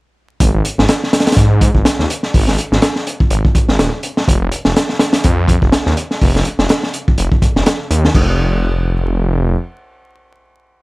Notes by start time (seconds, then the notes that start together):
0.40 G#1, kick, closed hi-hat
0.54 G#1
0.65 closed hi-hat
0.78 G#1, snare
0.88 snare, closed hi-hat
1.03 snare
1.13 snare, closed hi-hat
1.20 snare, closed hi-hat
1.27 snare, closed hi-hat
1.32 snare, closed hi-hat
1.37 G#2, kick, closed hi-hat
1.61 kick, closed hi-hat
1.75 G#1, kick
1.85 snare, closed hi-hat
1.99 D#2, snare
2.10 closed hi-hat
2.23 snare
2.34 G#1, kick, open hi-hat
2.48 G#1, snare
2.58 closed hi-hat
2.72 G#1, snare
2.82 snare, closed hi-hat
2.96 snare
3.07 closed hi-hat
3.20 kick
3.30 G#1, closed hi-hat
3.45 kick
3.55 kick, closed hi-hat
3.68 G#1, snare
3.79 D#1, snare, closed hi-hat
4.03 closed hi-hat
4.17 snare
4.28 F1, kick, closed hi-hat
4.41 F1
4.52 closed hi-hat
4.65 F1, snare
4.76 snare, closed hi-hat
4.89 snare
4.99 snare, closed hi-hat
5.13 snare, closed hi-hat
5.24 F2, kick, closed hi-hat
5.48 kick, closed hi-hat
5.62 F1, kick
5.72 snare, closed hi-hat
5.86 D#2, snare
5.97 closed hi-hat
6.11 snare
6.21 F1, kick, open hi-hat
6.35 F1, snare
6.45 closed hi-hat
6.59 F1, snare
6.69 snare, closed hi-hat
6.83 snare
6.94 closed hi-hat
7.08 kick
7.18 F1, closed hi-hat
7.32 kick
7.42 kick, closed hi-hat
7.56 F1, snare
7.66 snare, closed hi-hat
7.90 D#2, closed hi-hat
8.05 snare
8.15 F1, kick, crash